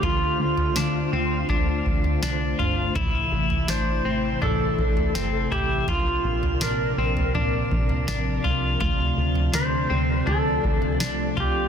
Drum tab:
SD |----o-------o---|----o-------o---|----o-------o---|----o-------o---|
FT |o--o----o--o--o-|o--o----o--o--o-|o--o---oo--o--o-|o--o----o--o--o-|
BD |o-------o-o-----|o---------o-----|o---------o-----|o---------o-----|